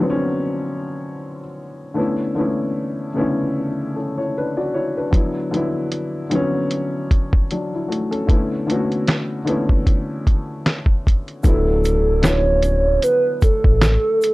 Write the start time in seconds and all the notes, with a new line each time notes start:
Already playing: F3 C#4 E4 A4
0.00 D3 F#3 B3 C4
0.10 C#4
1.94 D3 A3 B3 C#4
1.99 E4
2.35 D3 A3 B3 C#4
2.40 E4
3.14 C#3 A3 B3 C#4
3.19 D3 E4
3.96 C#4 A4
4.18 E4 C#5
4.38 D4 B4
4.57 F#4 D5
4.74 E4 C#5
4.97 D4 B4
5.11 D3 F#3 B3, kick, closed hi-hat
5.16 E4
5.51 D3 F#3 B3, closed hi-hat
5.56 E4
5.92 closed hi-hat
6.30 D3 F#3 B3, closed hi-hat
6.35 C#4
6.71 closed hi-hat
7.11 kick, closed hi-hat
7.33 kick
7.51 F#3 D4, closed hi-hat
7.74 E4
7.89 A3 F#4, closed hi-hat
8.11 C#4 A4, closed hi-hat
8.27 D3 A3 B3 C#4, kick, closed hi-hat
8.32 E4
8.67 D3 A3 B3 C#4, closed hi-hat
8.72 F#4
8.92 closed hi-hat
9.07 snare, closed hi-hat
9.45 D3 A3 B3 C#4, closed hi-hat
9.50 E4
9.69 kick
9.87 kick, closed hi-hat
10.27 kick, closed hi-hat
10.66 snare, closed hi-hat
10.86 kick
11.07 kick, closed hi-hat
11.28 closed hi-hat
11.43 D1 D3 F#3 B3 A4, kick, closed hi-hat, shaker
11.48 E4
11.84 closed hi-hat, shaker
12.22 D3 F#3 B3 C#5, snare, closed hi-hat, shaker
12.27 E4
12.62 closed hi-hat, shaker
13.02 B4, closed hi-hat, shaker
13.42 A4, kick, closed hi-hat, shaker
13.64 A1, kick
13.81 snare, closed hi-hat, shaker
14.22 closed hi-hat, shaker